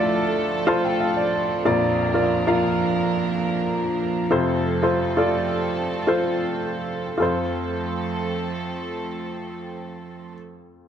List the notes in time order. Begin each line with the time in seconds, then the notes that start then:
Already playing: D2 A2 F3 A3 D4 F4 A4 D5 E5
0.67 F4 A4 C5 A5
0.85 G5
1.00 F5
1.17 D5
1.64 A#1 F2 A#3 F4 A#4 D5
2.14 F4 A#4 D5
2.47 F4 A#4 F5
4.30 F2 C3 A3 C4 F4 A4 C5
4.82 F4 A4 C5
5.17 F4 A4 D5
6.07 F4 A4 C5
7.18 F2 F3 A3 C4 F4 A4
7.22 C5